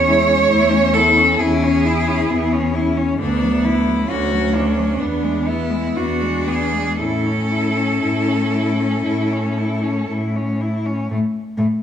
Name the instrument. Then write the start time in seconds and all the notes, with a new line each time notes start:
cello
Already playing: E2 C#5
0.07 G#3 E4
0.28 C#4
0.50 E2 A3 E4
0.72 C#4
0.94 B3 E4 A4
1.17 C#4
1.39 E2 C#4 E4 G#4
1.63 C#4
1.85 E4
2.08 C#4
2.30 E2 B3 E4
2.52 C#4
2.73 C#4 E4
2.97 C#4
3.20 D2 D3 B3 D4
3.42 F#3
3.65 D3 E4
3.87 F#3
4.08 D2 D3 C#4 F#4
4.32 F#3
4.54 D3 D4
4.78 F#3
5.00 E2 B3 D4
5.23 G#3
5.47 B3 E4
5.70 G#3
5.96 E2 B3 D4 F#4
6.21 G#3
6.46 B3 G#4
6.73 G#3
7.00 A2 C#4 E4 A4
7.26 C#4
7.51 E4
7.77 C#4
8.03 A2 E4
8.28 C#4
8.54 E4
8.79 C#4
9.05 A2 E4
9.32 C#4
9.58 E4
9.84 C#4
10.10 A2 E4
10.36 C#4
10.61 E4
10.86 C#4
11.10 A2 A3
11.58 A2 A3